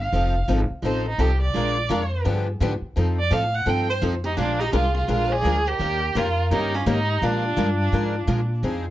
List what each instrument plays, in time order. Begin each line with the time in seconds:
Already playing: upright bass G1
0.01 violin F5
0.13 upright bass F1, steel-string acoustic guitar F3 C4 D#4 A4
0.48 upright bass G#1, steel-string acoustic guitar F3 C4 D#4 A4
0.70 muted upright bass stroke
0.82 upright bass A1, steel-string acoustic guitar F3 C4 D#4 A4, violin C5
1.09 violin D#4
1.18 upright bass C2, steel-string acoustic guitar F3 C4 D#4 A4, violin G4
1.42 violin D5
1.55 upright bass A#1, steel-string acoustic guitar F3 G#3 D4 F4 A#4
1.90 upright bass F2, steel-string acoustic guitar F3 G#3 D4 F4 A#4
2.25 upright bass G2, steel-string acoustic guitar D3 F3 B3 D4 G4
2.61 upright bass G#2, steel-string acoustic guitar D3 F3 B3 D4 G4
2.82 muted upright bass stroke
2.96 upright bass F2, steel-string acoustic guitar F3 C4 D#4 A4
3.19 violin D5
3.31 upright bass A2, steel-string acoustic guitar F3 C4 D#4 A4, violin F5
3.55 violin F#5
3.66 upright bass G2, steel-string acoustic guitar F3 C4 D#4 A4, violin G5
3.89 violin C5
4.02 upright bass F2, steel-string acoustic guitar F3 C4 D#4 A4
4.24 violin D#4, steel-string acoustic guitar G4
4.37 upright bass A#1, steel-string acoustic guitar F3 G#3 D4 F4 A#4, violin D4
4.59 violin D#4, steel-string acoustic guitar G4
4.73 upright bass C2, steel-string acoustic guitar F3 G#3 D4 F4 G#4 A#4, violin F4
4.95 violin F4, steel-string acoustic guitar G#4
5.08 upright bass A#1, steel-string acoustic guitar F3 G#3 D4 F4 G#4 A#4, violin F4
5.31 violin G#4, steel-string acoustic guitar D5
5.44 upright bass D2, steel-string acoustic guitar F3 G#3 D4 F4 A#4
5.67 violin G4, steel-string acoustic guitar A#4
5.79 upright bass D#2, steel-string acoustic guitar D#3 A#3 C#4 G4 A#4
6.15 upright bass F2, steel-string acoustic guitar D#3 A#3 C#4 G4 A#4, violin F4
6.51 upright bass G2, steel-string acoustic guitar D#3 A#3 C#4 G4 A#4, violin D#4
6.74 violin C#4, steel-string acoustic guitar F4
6.86 upright bass G#2, steel-string acoustic guitar D#3 A#3 C#4 G4 A#4, violin D#4
7.22 upright bass A#2, steel-string acoustic guitar F3 G#3 D4 F4 A#4, violin D4
7.57 upright bass G2, steel-string acoustic guitar F3 G#3 D4 F4 A#4
7.93 upright bass G#2, steel-string acoustic guitar F3 G#3 D4 F4 A#4
8.27 upright bass A#2, steel-string acoustic guitar F3 G#3 D4 F4 A#4
8.63 upright bass F2, steel-string acoustic guitar F3 C4 D#4 G#4